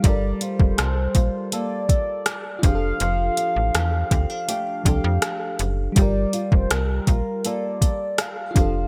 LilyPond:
<<
  \new Staff \with { instrumentName = "Soft synth lead" } { \time 4/4 \key g \minor \tempo 4 = 81 d''8 c''4. d''4. f''8~ | f''2~ f''8 f''4 r8 | d''8. c''16 bes'4 d''4 f''4 | }
  \new Staff \with { instrumentName = "FM electric piano" } { \time 4/4 \key g \minor <g f' a' bes'>2.~ <g f' a' bes'>8 <d' f' g' aes' a'>8~ | <d' f' g' aes' a'>2~ <d' f' g' aes' a'>8 <f d' g' a'>4. | <g f' g' bes'>2.~ <g f' g' bes'>8 <d' f' g' a'>8 | }
  \new Staff \with { instrumentName = "Nylon-string guitar" } { \time 4/4 \key g \minor g8 f'8 a'8 f'8 <bes f' a'>8 a'4 f8 | f8 d'8 g'8 c'16 d'16 <a d' g'>8 g'4. | g8 f'4 f'8 <bes f' a'>8 a'4 f8 | }
  \new Staff \with { instrumentName = "FM bass" } { \clef bass \time 4/4 \key g \minor g,,8 r16 f,,16 c,8 bes,,16 r4. r16 f,,8 | f,,8 r16 a,,16 e,8 d,16 r8. c,16 f,16 r8 fis,,8 | g,,8 r16 f,,16 c,8 bes,,16 r4. r16 f,,8 | }
  \new DrumStaff \with { instrumentName = "Drums" } \drummode { \time 4/4 <hh bd>8 hh16 bd16 <hh ss>8 <hh bd>8 hh8 <hh bd>8 <hh ss>8 <hh bd>8 | hh8 hh8 <hh ss>8 <hh bd>8 hh8 <hh bd>8 <hh ss>8 hh8 | <hh bd>8 hh16 bd16 <hh ss>8 <hh bd>8 hh8 <hh bd>8 <hh ss>8 <hh bd>8 | }
>>